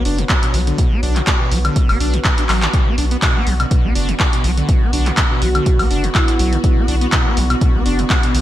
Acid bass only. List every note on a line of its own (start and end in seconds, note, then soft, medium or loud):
0.05 0.20 D4 medium
0.18 0.25 B2 medium
0.30 0.34 B3 medium
0.43 0.56 B2 medium
0.54 0.61 F#3 medium
0.67 0.80 D3 medium
0.78 0.93 B2 medium
0.92 1.01 B3 loud
1.03 1.17 D4 medium
1.16 1.22 B2 medium
1.27 1.32 B2 medium
1.40 1.53 B2 medium
1.52 1.59 F#3 medium
1.65 1.77 D3 medium
1.76 1.91 B2 medium
1.89 1.98 B3 loud
2.00 2.15 D4 medium
2.14 2.20 B2 medium
2.25 2.29 A2 medium
2.38 2.44 D4 medium
2.49 2.64 F#3 medium
2.62 2.69 D3 medium
2.74 2.88 B2 medium
2.87 2.96 B3 loud
2.98 3.05 D4 medium
3.11 3.17 B3 medium
3.22 3.37 B2 medium
3.35 3.48 B3 medium
3.47 3.54 F#3 medium
3.60 3.66 B2 medium
3.71 3.86 B2 medium
3.84 3.94 B3 loud
3.95 4.10 D4 medium
4.09 4.15 B2 medium
4.20 4.24 B3 medium
4.33 4.46 B2 medium
4.44 4.51 F#3 medium
4.57 4.70 D3 medium
4.69 4.83 B2 medium
4.82 4.91 B3 loud
4.93 5.08 D4 medium
5.06 5.13 B2 medium
5.17 5.22 B2 medium
5.31 5.44 B2 medium
5.42 5.49 F#3 medium
5.55 5.68 D3 medium
5.66 5.81 B2 medium
5.80 5.89 B3 loud
5.91 6.05 D4 medium
6.04 6.10 B2 medium
6.15 6.19 A2 medium
6.28 6.34 D4 medium
6.39 6.54 F#3 medium
6.53 6.59 D3 medium
6.64 6.79 B2 medium
6.77 6.86 B3 loud
6.88 6.95 D4 medium
7.01 7.08 B3 medium
7.13 7.27 B2 medium
7.26 7.38 B3 medium
7.37 7.44 F#3 medium
7.50 7.56 B2 medium
7.61 7.76 B2 medium
7.75 7.84 B3 medium
7.86 8.00 D4 medium
7.99 8.05 B2 medium
8.10 8.15 B3 medium
8.23 8.36 B2 medium
8.35 8.41 F#3 medium